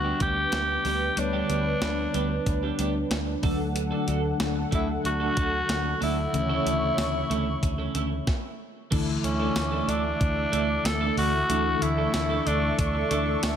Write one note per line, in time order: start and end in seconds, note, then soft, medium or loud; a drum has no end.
0.00 0.11 D2 medium
0.00 1.13 D3 medium
0.00 1.13 G3 medium
0.00 1.14 B3 medium
0.00 1.14 D4 medium
0.00 6.30 D4 medium
0.00 0.19 F#4 loud
0.00 3.39 B4 medium
0.04 0.18 G3 soft
0.04 0.18 B3 medium
0.04 0.18 D4 medium
0.04 0.18 G4 medium
0.20 0.44 D2 medium
0.20 0.37 G3 medium
0.20 0.36 B3 medium
0.20 0.36 D4 medium
0.20 0.35 G4 loud
0.20 1.20 G4 loud
0.20 kick medium
0.20 closed hi-hat medium
0.37 muted clean electric guitar stroke soft
0.52 0.76 D2 medium
0.52 muted clean electric guitar stroke soft
0.52 snare loud
0.52 closed hi-hat medium
0.69 muted clean electric guitar stroke soft
0.85 1.08 D2 medium
0.85 1.02 G3 medium
0.85 1.01 B3 medium
0.85 1.00 D4 medium
0.85 1.00 G4 medium
0.85 open hi-hat medium
1.01 muted clean electric guitar stroke soft
1.16 1.40 D2 loud
1.16 3.39 D3 medium
1.16 3.39 G3 medium
1.16 3.40 B3 medium
1.16 3.12 D4 loud
1.16 3.40 C#5 medium
1.16 muted clean electric guitar stroke soft
1.16 closed hi-hat medium
1.33 1.48 G3 medium
1.33 1.49 B3 medium
1.33 1.49 D4 medium
1.33 1.50 G4 medium
1.49 1.73 D2 medium
1.49 1.63 G3 medium
1.49 1.63 B3 medium
1.49 1.63 D4 medium
1.49 1.64 G4 medium
1.49 closed hi-hat medium
1.66 muted clean electric guitar stroke medium
1.82 2.05 D2 medium
1.82 snare loud
1.82 closed hi-hat medium
1.98 muted clean electric guitar stroke soft
2.14 2.37 D2 medium
2.14 2.31 G3 medium
2.14 2.30 B3 medium
2.14 2.30 D4 medium
2.14 2.29 G4 medium
2.14 closed hi-hat medium
2.30 muted clean electric guitar stroke medium
2.46 2.70 D2 medium
2.46 muted clean electric guitar stroke soft
2.46 kick medium
2.46 closed hi-hat medium
2.63 2.77 G3 soft
2.63 2.77 B3 medium
2.63 2.76 D4 soft
2.63 2.76 G4 medium
2.79 3.02 D2 medium
2.79 2.96 G3 medium
2.79 2.95 B3 medium
2.79 2.94 D4 medium
2.79 2.94 G4 loud
2.79 closed hi-hat medium
2.95 muted clean electric guitar stroke soft
3.11 3.34 D2 loud
3.11 muted clean electric guitar stroke soft
3.11 snare loud
3.11 closed hi-hat medium
3.27 muted clean electric guitar stroke soft
3.42 3.90 D2 loud
3.42 5.97 D3 medium
3.42 5.97 F#3 medium
3.42 3.60 A3 medium
3.42 5.98 A3 medium
3.42 3.59 D4 medium
3.42 5.98 D4 medium
3.42 3.59 F#4 medium
3.42 8.23 A4 medium
3.42 3.58 A4 medium
3.42 6.31 F#5 medium
3.42 kick loud
3.42 open hi-hat medium
3.59 muted clean electric guitar stroke soft
3.75 muted clean electric guitar stroke soft
3.75 closed hi-hat medium
3.91 4.06 A3 medium
3.91 4.06 D4 medium
3.91 4.07 F#4 medium
3.91 4.07 A4 medium
4.07 4.31 D2 loud
4.07 4.21 A3 medium
4.07 4.21 D4 medium
4.07 4.21 F#4 medium
4.07 4.21 A4 medium
4.07 closed hi-hat medium
4.23 muted clean electric guitar stroke soft
4.40 4.63 D2 medium
4.40 snare loud
4.40 closed hi-hat medium
4.56 muted clean electric guitar stroke medium
4.71 4.96 D2 loud
4.71 4.89 A3 medium
4.71 4.88 D4 medium
4.71 4.88 E4 medium
4.71 4.87 F#4 medium
4.71 4.87 A4 medium
4.71 kick loud
4.71 closed hi-hat medium
4.88 muted clean electric guitar stroke soft
5.04 5.28 D2 loud
5.04 5.98 F#4 loud
5.04 muted clean electric guitar stroke soft
5.04 closed hi-hat medium
5.20 5.34 A3 soft
5.20 5.34 D4 medium
5.20 5.34 F#4 medium
5.20 5.34 A4 medium
5.36 5.60 D2 loud
5.36 5.53 A3 medium
5.36 5.52 D4 medium
5.36 5.52 F#4 loud
5.36 5.51 A4 medium
5.36 kick medium
5.36 closed hi-hat medium
5.52 muted clean electric guitar stroke soft
5.69 5.92 D2 loud
5.69 muted clean electric guitar stroke soft
5.69 snare loud
5.69 closed hi-hat loud
5.84 muted clean electric guitar stroke soft
6.01 6.25 D2 loud
6.01 6.18 A3 medium
6.01 6.17 D4 medium
6.01 8.56 E4 loud
6.01 6.16 F#4 medium
6.01 6.16 A4 medium
6.01 open hi-hat medium
6.17 muted clean electric guitar stroke soft
6.33 6.57 D2 loud
6.33 8.23 C#3 medium
6.33 8.23 E3 medium
6.33 8.24 A3 medium
6.33 8.24 C#4 medium
6.33 8.26 C#5 medium
6.33 8.26 E5 medium
6.33 8.26 C#6 medium
6.33 muted clean electric guitar stroke soft
6.33 closed hi-hat medium
6.49 6.64 A3 medium
6.49 6.65 C#4 medium
6.49 6.65 E4 medium
6.49 6.66 A4 medium
6.65 6.89 D2 loud
6.65 6.79 A3 medium
6.65 6.79 C#4 medium
6.65 6.79 E4 medium
6.65 6.80 A4 medium
6.65 closed hi-hat medium
6.82 muted clean electric guitar stroke soft
6.98 7.21 D2 loud
6.98 snare loud
6.98 closed hi-hat medium
6.98 tambourine medium
7.14 muted clean electric guitar stroke soft
7.30 7.54 D2 loud
7.30 7.47 A3 medium
7.30 7.46 C#4 medium
7.30 7.46 E4 medium
7.30 7.45 A4 medium
7.30 closed hi-hat medium
7.46 muted clean electric guitar stroke soft
7.63 7.86 D2 loud
7.63 muted clean electric guitar stroke soft
7.63 kick medium
7.63 closed hi-hat medium
7.78 7.93 A3 soft
7.78 7.92 C#4 medium
7.78 7.92 E4 medium
7.78 7.92 A4 medium
7.94 8.18 D2 loud
7.94 8.12 A3 medium
7.94 8.11 C#4 medium
7.94 8.10 E4 loud
7.94 8.10 A4 medium
7.94 closed hi-hat medium
8.11 muted clean electric guitar stroke soft
8.27 kick loud
8.27 snare medium
8.91 9.15 D2 loud
8.91 11.45 D3 medium
8.91 11.46 E3 medium
8.91 9.08 A3 medium
8.91 11.46 A3 medium
8.91 9.07 D4 medium
8.91 9.07 E4 medium
8.91 11.47 E4 medium
8.91 13.56 A4 medium
8.91 9.06 A4 medium
8.91 13.56 E5 medium
8.91 11.47 D6 medium
8.91 13.56 E6 medium
8.91 kick loud
8.91 closed hi-hat medium
8.91 crash loud
9.07 muted clean electric guitar stroke soft
9.24 9.47 D2 loud
9.24 9.91 C#4 medium
9.24 muted clean electric guitar stroke soft
9.24 closed hi-hat medium
9.40 9.54 A3 medium
9.40 9.54 D4 medium
9.40 9.53 E4 medium
9.40 9.53 A4 medium
9.56 9.79 D2 loud
9.56 muted clean electric guitar stroke soft
9.56 snare loud
9.56 closed hi-hat medium
9.56 tambourine medium
9.71 9.87 A3 medium
9.71 9.87 D4 medium
9.71 9.88 E4 medium
9.71 9.88 A4 medium
9.88 10.11 D2 loud
9.88 10.01 A3 medium
9.88 10.02 D4 medium
9.88 10.87 D4 loud
9.88 10.02 E4 medium
9.88 10.02 A4 medium
9.88 closed hi-hat medium
10.04 muted clean electric guitar stroke soft
10.21 10.44 D2 loud
10.21 kick medium
10.21 closed hi-hat medium
10.36 muted clean electric guitar stroke medium
10.52 10.76 D2 loud
10.52 10.69 A3 medium
10.52 10.69 D4 medium
10.52 10.68 E4 medium
10.52 10.68 A4 medium
10.52 closed hi-hat medium
10.69 muted clean electric guitar stroke medium
10.85 11.08 D2 loud
10.85 11.18 A4 loud
10.85 muted clean electric guitar stroke soft
10.85 snare loud
10.85 closed hi-hat loud
10.85 tambourine medium
11.01 11.16 A3 medium
11.01 11.17 D4 medium
11.01 11.17 E4 medium
11.01 11.18 A4 medium
11.17 11.41 D2 loud
11.17 11.31 A3 medium
11.17 11.31 D4 medium
11.17 11.31 E4 medium
11.17 11.84 F#4 loud
11.17 11.31 A4 medium
11.17 open hi-hat medium
11.33 muted clean electric guitar stroke soft
11.49 11.73 D2 loud
11.49 13.56 D3 medium
11.49 13.56 E3 medium
11.49 11.66 A3 medium
11.49 13.56 A3 medium
11.49 11.65 D4 medium
11.49 13.56 D4 medium
11.49 11.65 E4 medium
11.49 13.56 E4 medium
11.49 11.64 A4 medium
11.49 13.56 C#6 medium
11.49 closed hi-hat loud
11.66 muted clean electric guitar stroke soft
11.81 12.05 D2 loud
11.81 12.49 E4 loud
11.81 muted clean electric guitar stroke soft
11.81 closed hi-hat medium
11.98 12.12 A3 soft
11.98 12.12 D4 medium
11.98 12.12 E4 medium
11.98 12.11 A4 medium
12.14 12.37 D2 medium
12.14 muted clean electric guitar stroke soft
12.14 snare loud
12.14 closed hi-hat medium
12.14 tambourine medium
12.30 12.45 A3 medium
12.30 12.45 D4 medium
12.30 12.46 E4 medium
12.30 12.46 A4 medium
12.46 12.70 D2 loud
12.46 12.59 A3 medium
12.46 12.60 D4 medium
12.46 12.79 D4 medium
12.46 12.60 E4 medium
12.46 12.60 A4 medium
12.46 closed hi-hat medium
12.63 muted clean electric guitar stroke soft
12.79 13.02 D2 loud
12.79 13.56 D4 medium
12.79 kick medium
12.79 closed hi-hat medium
12.95 muted clean electric guitar stroke medium
13.11 13.34 D2 loud
13.11 13.28 A3 medium
13.11 13.27 D4 medium
13.11 13.27 E4 loud
13.11 13.26 A4 loud
13.11 closed hi-hat medium
13.27 muted clean electric guitar stroke medium
13.43 13.56 D2 loud
13.43 muted clean electric guitar stroke soft
13.43 snare loud
13.43 closed hi-hat loud
13.43 tambourine medium